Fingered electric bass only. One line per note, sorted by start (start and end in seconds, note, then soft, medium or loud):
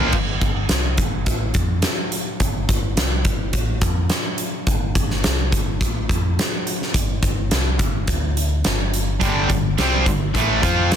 0.13 0.40 G1 medium
0.41 0.68 G1 medium
0.69 0.96 C2 medium
0.99 1.25 G1 medium
1.27 1.53 A1 medium
1.55 1.82 F2 medium
2.41 2.67 G1 medium
2.69 2.95 G1 medium
2.96 3.23 C2 medium
3.25 3.52 G1 medium
3.54 3.81 A1 medium
3.82 4.08 F2 medium
4.67 4.94 G1 medium
4.96 5.22 G1 medium
5.25 5.51 C2 medium
5.52 5.79 G1 medium
5.81 6.07 A1 medium
6.10 6.36 F2 medium
6.94 7.21 G1 medium
7.23 7.49 G1 medium
7.52 7.78 C2 medium
7.79 8.06 G1 medium
8.08 8.61 D2 medium
8.65 9.18 G1 medium
9.21 9.48 G1 medium
9.50 9.77 G1 medium
9.77 10.04 C2 medium
10.06 10.33 G1 medium
10.35 10.62 A1 medium
10.63 10.90 F2 medium